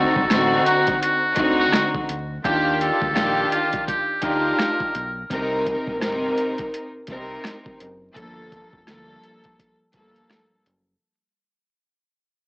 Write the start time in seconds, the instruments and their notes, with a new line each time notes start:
Already playing: string section D3 C4 D#4 F#4, muted trumpet A4
0.16 fingered electric bass C2, kick
0.30 fingered electric bass A1, string section D3 C4 D#4 F#4, cross-stick, snare, closed hi-hat
0.66 muted trumpet F#4, closed hi-hat
0.87 kick, closed hi-hat
1.02 muted trumpet F#4, closed hi-hat
1.35 fingered electric bass D2, string section D3 C4 D#4 F#4, kick, closed hi-hat
1.59 muted trumpet F#4
1.73 cross-stick, snare, closed hi-hat
1.95 kick
2.09 fingered electric bass D2, closed hi-hat
2.44 fingered electric bass D#2, string section D#3 D4 F4 G4, muted trumpet G4, kick, closed hi-hat
2.81 muted trumpet A4, closed hi-hat
3.02 fingered electric bass D2, kick
3.13 fingered electric bass A#1, string section D#3 D4 F4 G4, cross-stick, snare
3.17 closed hi-hat
3.51 muted trumpet F4, closed hi-hat
3.73 kick, closed hi-hat
3.87 muted trumpet G4, kick, closed hi-hat
4.21 fingered electric bass D2, string section D4 D#4 F4 G4, muted trumpet A#4, kick, closed hi-hat
4.59 cross-stick, snare, closed hi-hat
4.80 kick
4.95 fingered electric bass B1, closed hi-hat
5.30 fingered electric bass C2, string section C3 C4 D#4 A#4, kick, closed hi-hat
5.66 kick, closed hi-hat
5.87 fingered electric bass A#1, kick
6.00 fingered electric bass G1, string section C3 C4 D#4 A#4, cross-stick, snare, closed hi-hat
6.38 closed hi-hat
6.58 kick, closed hi-hat
6.74 closed hi-hat
7.07 fingered electric bass C2, string section C3 C4 D#4 A#4, kick, closed hi-hat
7.44 cross-stick, snare, closed hi-hat
7.66 kick
7.80 fingered electric bass F#1, closed hi-hat
8.13 fingered electric bass G1, string section G2 F3 A#3 A4, kick, closed hi-hat
8.52 kick, closed hi-hat
8.73 fingered electric bass F1, kick
8.87 fingered electric bass D2, string section G2 F3 A#3 A4, cross-stick, snare, closed hi-hat
9.23 closed hi-hat
9.44 kick, closed hi-hat
9.59 kick, closed hi-hat
9.92 fingered electric bass G1, string section G2 F3 A#3 A4, kick, closed hi-hat
10.16 closed hi-hat
10.30 cross-stick, snare, closed hi-hat
10.66 fingered electric bass F#1, closed hi-hat